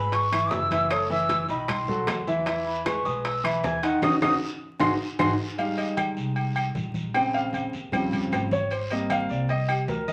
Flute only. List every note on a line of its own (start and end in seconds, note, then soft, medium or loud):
0.00 0.16 B5 loud
0.14 0.54 C#6 medium
0.52 0.93 E6 loud
0.92 1.10 D#6 medium
1.11 1.47 E6 loud
1.50 1.71 B5 loud
1.70 2.28 C6 medium
2.67 2.88 B5 loud
2.87 3.07 C#6 medium
3.05 3.27 D#6 loud
3.25 3.46 E6 loud
3.45 3.66 B5 loud
3.65 3.85 G#5 medium
3.83 4.03 F#5 loud
4.03 4.16 D#6 loud
4.22 4.35 D#6 loud
4.80 4.93 C6 loud
5.20 5.32 C6 loud